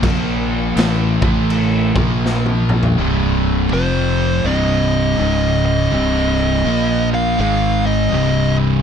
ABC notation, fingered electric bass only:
X:1
M:4/4
L:1/8
Q:"Swing" 1/4=82
K:Cdor
V:1 name="Fingered electric bass" clef=bass
B,,,2 A,,, A,,,2 B,,,3 | C,,,2 F,,,2 C,,,2 _D,,,2 | C,,,2 B,,,2 _A,,,2 C,,,2 |]